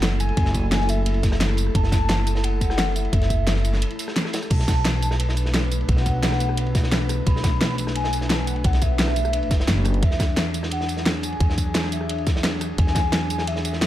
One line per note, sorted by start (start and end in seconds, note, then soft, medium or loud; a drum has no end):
0.00 0.36 F#1 medium
0.00 4.47 A3 medium
0.00 4.47 E4 medium
0.00 4.47 A4 medium
0.00 snare loud
0.00 closed hi-hat medium
0.00 ride medium
0.20 0.91 G#5 loud
0.20 closed hi-hat medium
0.20 ride medium
0.20 tambourine medium
0.29 ride soft
0.37 1.74 F#1 loud
0.37 kick loud
0.37 closed hi-hat medium
0.37 ride medium
0.45 snare soft
0.54 kick medium
0.54 closed hi-hat medium
0.54 ride medium
0.54 tambourine medium
0.72 snare loud
0.72 closed hi-hat medium
0.72 ride medium
0.80 snare soft
0.89 1.41 E5 loud
0.89 closed hi-hat medium
0.89 ride medium
0.89 tambourine medium
1.06 closed hi-hat loud
1.06 ride medium
1.14 ride soft
1.23 kick loud
1.23 snare soft
1.23 closed hi-hat medium
1.23 ride medium
1.23 tambourine medium
1.32 cross-stick medium
1.32 snare medium
1.40 snare loud
1.40 closed hi-hat medium
1.40 ride medium
1.49 cross-stick medium
1.49 ride soft
1.57 closed hi-hat medium
1.57 ride medium
1.57 tambourine medium
1.67 cross-stick soft
1.75 3.12 F#1 loud
1.75 2.46 A5 loud
1.75 kick loud
1.75 closed hi-hat loud
1.75 ride medium
1.84 snare soft
1.92 kick loud
1.92 snare medium
1.92 snare soft
1.92 closed hi-hat medium
1.92 ride medium
1.92 tambourine medium
2.09 snare loud
2.09 closed hi-hat loud
2.09 ride loud
2.27 cross-stick soft
2.27 closed hi-hat medium
2.27 ride medium
2.27 tambourine medium
2.35 snare medium
2.44 2.61 F#5 loud
2.44 closed hi-hat loud
2.44 ride medium
2.61 2.97 F#5 loud
2.61 kick medium
2.61 closed hi-hat medium
2.61 ride medium
2.61 tambourine medium
2.70 cross-stick medium
2.70 snare soft
2.78 snare loud
2.78 closed hi-hat medium
2.78 ride medium
2.96 4.16 E5 loud
2.96 closed hi-hat medium
2.96 ride medium
2.96 tambourine medium
3.05 ride soft
3.13 3.82 F#1 loud
3.13 kick loud
3.13 closed hi-hat loud
3.13 ride medium
3.22 snare soft
3.22 closed hi-hat soft
3.30 kick medium
3.30 closed hi-hat medium
3.30 ride medium
3.30 tambourine medium
3.47 snare loud
3.47 closed hi-hat loud
3.47 ride medium
3.56 snare soft
3.65 closed hi-hat medium
3.65 ride medium
3.65 tambourine medium
3.74 snare soft
3.82 closed hi-hat loud
3.82 ride medium
3.91 closed hi-hat soft
3.91 ride soft
3.99 closed hi-hat medium
3.99 ride medium
3.99 tambourine medium
4.08 cross-stick medium
4.08 snare soft
4.16 snare loud
4.16 closed hi-hat loud
4.16 ride medium
4.25 cross-stick medium
4.25 snare soft
4.33 snare loud
4.33 closed hi-hat medium
4.33 ride medium
4.33 tambourine medium
4.42 cross-stick soft
4.42 tambourine soft
4.50 5.87 B1 loud
4.50 9.98 A3 medium
4.50 13.87 D4 medium
4.50 9.98 B4 medium
4.50 5.50 A5 loud
4.50 kick loud
4.50 closed hi-hat loud
4.50 crash loud
4.50 ride medium
4.60 snare soft
4.68 kick loud
4.68 snare soft
4.68 snare medium
4.68 closed hi-hat medium
4.68 ride medium
4.68 tambourine medium
4.85 snare loud
4.85 closed hi-hat loud
4.85 ride medium
5.02 closed hi-hat medium
5.02 ride medium
5.02 tambourine medium
5.11 cross-stick soft
5.11 snare soft
5.20 closed hi-hat loud
5.20 ride medium
5.29 snare soft
5.37 closed hi-hat medium
5.37 ride medium
5.37 tambourine medium
5.46 snare soft
5.54 snare loud
5.54 closed hi-hat loud
5.54 ride medium
5.72 closed hi-hat medium
5.72 ride medium
5.72 tambourine medium
5.81 ride soft
5.88 7.25 B1 loud
5.88 7.06 F#5 loud
5.88 kick loud
5.88 closed hi-hat medium
5.88 ride loud
5.97 snare soft
6.06 kick medium
6.06 closed hi-hat medium
6.06 ride medium
6.06 tambourine medium
6.23 snare loud
6.23 closed hi-hat loud
6.23 ride medium
6.32 cross-stick medium
6.32 snare soft
6.40 closed hi-hat medium
6.40 ride medium
6.40 tambourine medium
6.49 cross-stick soft
6.57 closed hi-hat loud
6.57 ride medium
6.66 ride soft
6.75 kick loud
6.75 snare soft
6.75 closed hi-hat medium
6.75 ride medium
6.75 tambourine medium
6.84 snare medium
6.92 snare loud
6.92 closed hi-hat medium
6.92 ride medium
7.01 ride soft
7.09 cross-stick medium
7.09 closed hi-hat medium
7.09 ride medium
7.09 tambourine medium
7.26 8.63 B1 medium
7.26 7.75 B5 loud
7.26 kick loud
7.26 closed hi-hat medium
7.26 ride medium
7.36 snare soft
7.44 kick loud
7.44 snare medium
7.44 snare soft
7.44 closed hi-hat medium
7.44 ride medium
7.44 tambourine medium
7.61 snare loud
7.61 closed hi-hat medium
7.61 ride medium
7.78 closed hi-hat medium
7.78 ride medium
7.78 tambourine medium
7.87 cross-stick soft
7.87 snare medium
7.95 8.30 G#5 loud
7.95 closed hi-hat loud
7.95 ride medium
8.04 snare soft
8.13 closed hi-hat medium
8.13 ride medium
8.13 tambourine medium
8.21 snare soft
8.28 8.39 A5 medium
8.28 snare loud
8.28 closed hi-hat medium
8.28 ride medium
8.37 8.48 G#5 medium
8.46 8.57 F#5 medium
8.46 closed hi-hat medium
8.46 ride medium
8.46 tambourine medium
8.56 8.67 G#5 medium
8.56 ride soft
8.64 9.51 B1 loud
8.64 8.84 F#5 loud
8.64 kick loud
8.64 closed hi-hat medium
8.64 ride medium
8.73 snare soft
8.73 closed hi-hat soft
8.82 9.85 E5 loud
8.82 kick medium
8.82 closed hi-hat medium
8.82 ride medium
8.82 tambourine medium
8.99 snare loud
8.99 closed hi-hat medium
8.99 ride medium
9.08 cross-stick medium
9.08 snare soft
9.16 closed hi-hat medium
9.16 ride medium
9.16 tambourine medium
9.25 cross-stick soft
9.25 tambourine soft
9.33 closed hi-hat medium
9.33 ride medium
9.43 ride soft
9.51 9.66 F#1 loud
9.51 kick loud
9.51 snare soft
9.51 closed hi-hat medium
9.51 ride medium
9.51 tambourine medium
9.60 snare soft
9.68 10.01 F#1 loud
9.68 snare loud
9.68 closed hi-hat medium
9.68 ride medium
9.77 ride soft
9.85 cross-stick soft
9.85 closed hi-hat medium
9.85 ride medium
9.85 tambourine medium
9.94 closed hi-hat soft
10.03 11.39 E2 loud
10.03 13.87 F#3 medium
10.03 13.87 G#4 medium
10.03 10.51 E5 loud
10.03 kick loud
10.03 closed hi-hat medium
10.03 ride medium
10.11 snare soft
10.20 kick loud
10.20 snare soft
10.20 snare medium
10.20 closed hi-hat medium
10.20 ride medium
10.20 tambourine medium
10.37 snare loud
10.37 closed hi-hat medium
10.37 ride medium
10.54 closed hi-hat medium
10.54 ride medium
10.54 tambourine medium
10.63 cross-stick soft
10.63 snare medium
10.71 11.04 F#5 loud
10.71 closed hi-hat medium
10.71 ride medium
10.81 snare soft
10.88 closed hi-hat medium
10.88 ride medium
10.88 tambourine medium
10.97 snare soft
11.06 snare loud
11.06 closed hi-hat medium
11.06 ride medium
11.23 11.88 G#5 loud
11.23 closed hi-hat medium
11.23 ride medium
11.23 tambourine medium
11.32 ride soft
11.40 12.77 E2 medium
11.40 kick loud
11.40 closed hi-hat medium
11.40 ride medium
11.50 snare soft
11.58 kick medium
11.58 closed hi-hat medium
11.58 ride medium
11.58 tambourine medium
11.74 snare loud
11.74 closed hi-hat medium
11.74 ride medium
11.84 cross-stick soft
11.84 snare soft
11.92 12.41 E5 medium
11.92 closed hi-hat medium
11.92 ride medium
11.92 tambourine medium
12.01 cross-stick soft
12.09 closed hi-hat medium
12.09 ride medium
12.18 ride soft
12.27 kick loud
12.27 snare soft
12.27 closed hi-hat medium
12.27 ride medium
12.27 tambourine medium
12.36 snare medium
12.43 snare loud
12.43 closed hi-hat medium
12.43 ride loud
12.52 ride soft
12.61 cross-stick soft
12.61 closed hi-hat medium
12.61 ride medium
12.61 tambourine medium
12.78 13.87 E2 loud
12.78 13.49 G#5 loud
12.78 kick loud
12.78 closed hi-hat loud
12.78 ride medium
12.87 snare soft
12.95 kick loud
12.95 snare medium
12.95 snare soft
12.95 closed hi-hat medium
12.95 ride medium
12.95 tambourine medium
13.12 snare loud
13.12 closed hi-hat loud
13.12 ride medium
13.30 closed hi-hat medium
13.30 ride medium
13.30 tambourine medium
13.38 cross-stick soft
13.38 snare soft
13.47 13.64 E5 loud
13.47 closed hi-hat loud
13.47 ride medium
13.56 snare soft
13.65 13.87 E5 loud
13.65 closed hi-hat medium
13.65 ride medium
13.65 tambourine medium
13.73 snare soft
13.81 snare loud
13.81 closed hi-hat loud
13.81 ride medium